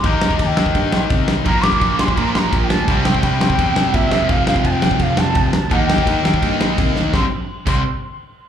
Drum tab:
CC |x---x---x---x---|x---x---x---x---|x---x---x---x---|x---x---x---x---|
SD |--o---o---o---o-|--o---o---o---o-|--o---o---o---o-|--o---o---o---o-|
BD |o--oo--oo---o---|o--oo--oo---o---|o--oo--oo---o---|o--oo--oo---o---|

CC |x---x---x---x---|------x---------|
SD |--o---o---o---o-|o---------------|
BD |o--oo--oo---o---|o-----o---------|